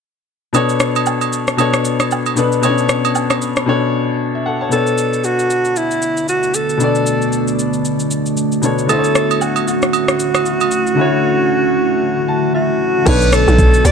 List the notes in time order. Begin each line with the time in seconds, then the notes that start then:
0.53 B2 B3 D4 A4 C#5, high agogo, shaker
0.69 shaker
0.80 cross-stick, shaker
0.96 high agogo, shaker
1.06 low woodblock, shaker
1.21 high agogo, shaker
1.33 shaker
1.47 cross-stick, shaker
1.57 B2 B3 D4 A4 C#5, high agogo, shaker
1.74 cross-stick, shaker
1.85 shaker
2.00 cross-stick, high agogo, shaker
2.11 low woodblock, shaker
2.26 high agogo, shaker
2.35 B2 B3 D4 A4 B4, shaker
2.52 shaker
2.62 B2 B3 C#4 A4 C#5, high agogo, shaker
2.69 D4
2.78 shaker
2.89 cross-stick, shaker
3.05 high agogo, shaker
3.15 low woodblock, shaker
3.30 cross-stick, high agogo, shaker
3.42 shaker
3.56 cross-stick, shaker
3.66 B2 B3 D4 A4 C#5
4.35 E5
4.46 A4 F#5
4.61 C#5 A5
4.69 B2 D3 A3 B3 D4 F#4 A4, shaker
4.74 A4 C#5
4.87 shaker
4.98 shaker
5.13 shaker
5.24 F#4, shaker
5.39 shaker
5.50 shaker
5.65 shaker
5.76 E4, shaker
5.91 shaker
6.02 shaker
6.17 shaker
6.28 F#4, shaker
6.43 shaker
6.54 A4, shaker
6.69 shaker
6.77 B2 B3 D4, shaker
6.82 A4 D5
6.95 shaker
7.06 shaker
7.22 shaker
7.32 shaker
7.48 shaker
7.59 shaker
7.73 shaker
7.85 shaker
8.00 shaker
8.11 shaker
8.26 shaker
8.37 shaker
8.52 shaker
8.62 B2 B3 D4 A4 C#5, shaker
8.78 shaker
8.86 D3 A3 C#4 E4 A4, high agogo, shaker
8.91 F#4 C5
8.99 C#5
9.04 shaker
9.15 cross-stick, shaker
9.31 high agogo, shaker
9.41 F#4, low woodblock, shaker
9.56 high agogo, shaker
9.67 F#4, shaker
9.82 cross-stick, shaker
9.93 high agogo, shaker
10.08 cross-stick, shaker
10.19 shaker
10.35 cross-stick, high agogo, shaker
10.46 shaker
10.60 high agogo, shaker
10.71 shaker
10.87 shaker
10.95 D3 A3 E4
10.99 F#4 C#5
12.28 A5
12.54 F#4 E5
13.05 B1 B2 D3 A3 B3 D4 F#4 A4 B4 C#5, kick, crash, shaker
13.22 shaker
13.32 A4, cross-stick, open hi-hat, shaker
13.48 B1, shaker
13.59 kick, shaker
13.74 shaker
13.85 D2 D5, open hi-hat, shaker